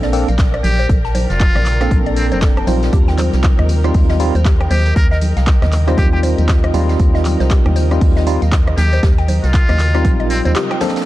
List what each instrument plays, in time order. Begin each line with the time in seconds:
Already playing: fm bass A#1, tine electric piano A#3 C4 D4 A4, string machine A#4, analog synth pad D5 G5
0.03 synth arpeggio sound D5, snare
0.13 tine electric piano A#3 C4 D4 A4, closed hi-hat, open hi-hat, tambourine
0.28 fm bass A#1, synth arpeggio sound F5, closed hi-hat, tambourine, high conga
0.39 kick, snare, clap, closed hi-hat, tambourine
0.54 synth arpeggio sound D5, cross-stick, closed hi-hat
0.64 fm bass A#1, muted trumpet G4, closed hi-hat, open hi-hat, tambourine, high conga
0.79 synth arpeggio sound C5, closed hi-hat, tambourine
0.89 fm bass A#1, synth arpeggio sound A4, kick, closed hi-hat, tambourine
1.04 synth arpeggio sound A5, snare
1.15 synth arpeggio sound C5, closed hi-hat, open hi-hat, tambourine, high conga
1.30 fm bass F1, muted trumpet F4, snare, closed hi-hat, tambourine
1.40 kick, snare, clap, closed hi-hat, tambourine
1.55 fm bass A#1, synth arpeggio sound D5, cross-stick, snare, closed hi-hat, high conga, low conga
1.65 clap, closed hi-hat, open hi-hat, tambourine
1.81 tine electric piano A#3 C4 D4 A4, synth arpeggio sound F5, cross-stick, closed hi-hat, tambourine
1.91 fm bass A#1, kick, closed hi-hat, tambourine, high conga
2.06 synth arpeggio sound D5, closed hi-hat
2.16 muted trumpet C4, closed hi-hat, open hi-hat, tambourine
2.32 fm bass F1, muted trumpet C4, synth arpeggio sound C5, closed hi-hat, tambourine, high conga
2.42 synth arpeggio sound A4, kick, snare, clap, closed hi-hat, tambourine
2.57 synth arpeggio sound A5, cross-stick, closed hi-hat
2.67 fm bass A#1, tine electric piano G3 C4 D#4 F4, synth arpeggio sound C5, closed hi-hat, open hi-hat, tambourine, high conga
2.83 snare, closed hi-hat, tambourine
2.93 fm bass D#2, synth arpeggio sound G4, analog synth pad A#4, kick, closed hi-hat, tambourine
3.08 synth arpeggio sound G5, snare
3.18 synth arpeggio sound C5, clap, closed hi-hat, open hi-hat, tambourine, high conga
3.33 fm bass C2, snare, closed hi-hat, tambourine
3.44 kick, snare, clap, closed hi-hat, tambourine
3.53 analog synth pad D#5
3.59 fm bass D#2, synth arpeggio sound D#5, cross-stick, closed hi-hat, high conga, low conga
3.69 closed hi-hat, open hi-hat, tambourine
3.84 tine electric piano G3 C4 D#4 F4, synth arpeggio sound F5, cross-stick, closed hi-hat, tambourine
3.94 fm bass D#2, kick, closed hi-hat, open hi-hat, tambourine, high conga
4.09 synth arpeggio sound D#5, snare
4.20 tine electric piano G3 C4 D#4 F4, closed hi-hat, open hi-hat, tambourine
4.35 fm bass D#2, synth arpeggio sound C5, closed hi-hat, tambourine, high conga
4.45 synth arpeggio sound G4, kick, snare, clap, closed hi-hat, tambourine
4.60 synth arpeggio sound G5, cross-stick, closed hi-hat
4.70 fm bass D#2, muted trumpet G4, synth arpeggio sound C5, closed hi-hat, open hi-hat, tambourine, high conga
4.86 closed hi-hat, tambourine
4.96 fm bass D#2, muted trumpet A#4, kick, closed hi-hat, tambourine
5.11 muted trumpet A#4, synth arpeggio sound D#5, snare
5.21 closed hi-hat, open hi-hat, tambourine, high conga
5.37 fm bass C2, synth arpeggio sound F5, snare, closed hi-hat, tambourine
5.46 kick, snare, clap, closed hi-hat, tambourine
5.62 fm bass D#2, synth arpeggio sound D#5, cross-stick, snare, closed hi-hat, high conga, low conga
5.72 clap, closed hi-hat, open hi-hat, tambourine
5.87 tine electric piano G3 C4 D#4 F4, synth arpeggio sound C5, cross-stick, closed hi-hat, tambourine
5.97 fm bass D#2, muted trumpet G4, synth arpeggio sound G4, kick, closed hi-hat, tambourine, high conga
6.13 muted trumpet G4, synth arpeggio sound G5
6.23 synth arpeggio sound C5, closed hi-hat, open hi-hat, tambourine
6.38 fm bass D#2, closed hi-hat, tambourine, high conga
6.49 kick, snare, clap, closed hi-hat, tambourine
6.64 synth arpeggio sound D#5, cross-stick, closed hi-hat
6.74 fm bass D#2, tine electric piano G3 C4 D#4 F4, closed hi-hat, open hi-hat, tambourine, high conga
6.89 synth arpeggio sound F5, snare, closed hi-hat, tambourine
7.00 fm bass D#2, kick, closed hi-hat, tambourine
7.15 synth arpeggio sound D#5, snare
7.25 clap, closed hi-hat, open hi-hat, tambourine, high conga
7.40 fm bass C2, synth arpeggio sound C5, snare, closed hi-hat, tambourine
7.50 synth arpeggio sound G4, kick, snare, clap, closed hi-hat, tambourine
7.65 fm bass D#2, synth arpeggio sound G5, cross-stick, closed hi-hat, high conga, low conga
7.76 synth arpeggio sound C5, closed hi-hat, open hi-hat, tambourine
7.91 tine electric piano G3 C4 D#4 F4, cross-stick, closed hi-hat, tambourine
8.01 fm bass D#2, kick, closed hi-hat, open hi-hat, tambourine, high conga
8.17 synth arpeggio sound D#5, snare
8.27 tine electric piano G3 C4 D#4 F4, closed hi-hat, open hi-hat, tambourine
8.41 fm bass D#2, synth arpeggio sound F5, closed hi-hat, tambourine, high conga
8.52 kick, snare, clap, closed hi-hat, tambourine
8.67 synth arpeggio sound D#5, cross-stick, closed hi-hat
8.77 fm bass D#2, muted trumpet G4, snare, closed hi-hat, open hi-hat, tambourine, high conga
8.93 synth arpeggio sound C5, closed hi-hat, tambourine
9.03 fm bass D#2, synth arpeggio sound G4, kick, snare, closed hi-hat, tambourine
9.18 synth arpeggio sound G5, snare, closed hi-hat
9.28 synth arpeggio sound C5, closed hi-hat, open hi-hat, tambourine, high conga
9.44 fm bass C2, muted trumpet F4, snare, closed hi-hat, tambourine
9.53 kick, snare, clap, closed hi-hat, tambourine
9.69 fm bass D#2, synth arpeggio sound D#5, cross-stick, snare, closed hi-hat, high conga, low conga
9.79 clap, closed hi-hat, open hi-hat, tambourine
9.94 tine electric piano G3 C4 D#4 F4, synth arpeggio sound F5, cross-stick, closed hi-hat, tambourine
10.05 fm bass A#1, kick, closed hi-hat, tambourine, high conga
10.20 synth arpeggio sound D#5, closed hi-hat
10.30 muted trumpet C4, closed hi-hat, open hi-hat, tambourine
10.45 fm bass D#2, muted trumpet C4, synth arpeggio sound C5, closed hi-hat, tambourine, high conga, low conga
10.55 synth arpeggio sound G4, snare, clap, closed hi-hat, tambourine
10.71 synth arpeggio sound G5, cross-stick, closed hi-hat
10.81 tine electric piano A#3 C4 D4 A4, synth arpeggio sound C5, snare, closed hi-hat, open hi-hat, tambourine, high conga
10.89 snare, closed hi-hat
10.96 snare, closed hi-hat, tambourine
11.01 snare, closed hi-hat